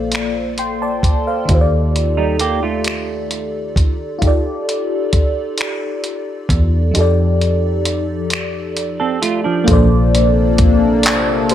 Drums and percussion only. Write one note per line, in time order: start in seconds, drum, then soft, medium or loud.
0.12 finger snap medium
0.12 closed hi-hat medium
0.58 closed hi-hat soft
1.03 kick medium
1.03 closed hi-hat medium
1.49 kick medium
1.49 closed hi-hat medium
1.96 closed hi-hat soft
2.40 closed hi-hat medium
2.84 finger snap loud
2.84 closed hi-hat medium
3.31 closed hi-hat soft
3.76 kick medium
3.76 closed hi-hat medium
4.22 kick medium
4.22 closed hi-hat medium
4.69 closed hi-hat soft
5.13 kick medium
5.13 closed hi-hat medium
5.58 finger snap loud
5.58 closed hi-hat medium
6.04 closed hi-hat soft
6.49 kick medium
6.49 closed hi-hat medium
6.95 closed hi-hat medium
7.41 closed hi-hat soft
7.85 closed hi-hat medium
8.30 finger snap medium
8.30 closed hi-hat medium
8.77 closed hi-hat soft
9.23 closed hi-hat medium
9.68 kick loud
9.68 closed hi-hat medium
10.15 closed hi-hat soft
10.58 kick medium
10.58 closed hi-hat medium
11.03 clap loud
11.03 closed hi-hat medium
11.49 closed hi-hat medium